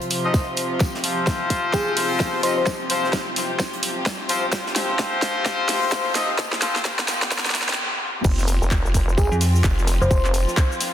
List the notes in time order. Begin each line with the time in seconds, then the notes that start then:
Already playing: C3 F3 F4 C5
0.02 closed hi-hat
0.10 open hi-hat, tambourine
0.25 F3 C4 D#4 F4 D#5
0.34 kick, snare, tambourine
0.57 open hi-hat, tambourine
0.80 G4, kick, snare, tambourine
0.94 snare
1.04 F3 C4 F4 C5, open hi-hat, tambourine
1.27 kick, snare, tambourine
1.50 kick, open hi-hat, tambourine
1.73 G#4, kick, snare, tambourine
1.97 snare, open hi-hat
2.20 kick, snare, tambourine
2.43 F3 C4 D#4 F4 C5 D#5, open hi-hat, tambourine
2.57 C5
2.67 kick, snare, tambourine
2.90 F3 C4 F4 C5, open hi-hat, tambourine
3.04 snare
3.13 kick, snare, tambourine
3.36 snare, open hi-hat, tambourine
3.60 kick, snare, tambourine
3.74 closed hi-hat
3.83 open hi-hat, tambourine
4.06 kick, snare, tambourine
4.29 F3 C4 F4 C5, open hi-hat, tambourine
4.52 kick, snare, tambourine
4.66 snare
4.76 F3 C4 F4 C5, snare, open hi-hat, tambourine
4.99 kick, snare, tambourine
5.22 kick, snare, open hi-hat, tambourine
5.46 kick, snare, tambourine
5.69 snare, open hi-hat
5.92 kick, snare, tambourine
6.15 F3 C4 D#4 F4 D#5, snare, open hi-hat, tambourine
6.38 kick, snare, tambourine
6.53 snare
6.62 F3 C4 F4 C5, snare, open hi-hat, tambourine
6.76 snare
6.84 kick, snare, tambourine
6.99 snare
7.08 snare, open hi-hat, tambourine
7.22 snare
7.31 kick, snare, tambourine
7.39 snare
7.45 snare, closed hi-hat
7.50 snare
7.55 kick, snare, open hi-hat, tambourine
7.62 snare
7.69 snare
7.73 snare
8.24 F1 F3 C4 F4, kick, tambourine, crash, shaker
8.37 snare, shaker
8.47 open hi-hat, tambourine, shaker
8.62 F1, shaker
8.71 kick, snare, clap, tambourine, shaker
8.85 F1, shaker
8.94 kick, open hi-hat, tambourine, shaker
9.09 shaker
9.18 G#1 G#4, kick, tambourine, shaker
9.32 F2, shaker
9.41 snare, open hi-hat, shaker
9.55 shaker
9.64 F1, kick, snare, clap, tambourine, shaker
9.79 shaker
9.87 open hi-hat, tambourine, shaker
10.01 F1 C5, shaker
10.11 F1, kick, tambourine, shaker
10.25 clap, shaker
10.34 open hi-hat, tambourine, shaker
10.48 snare, shaker
10.57 kick, snare, clap, tambourine, shaker
10.72 shaker
10.80 snare, open hi-hat, tambourine, shaker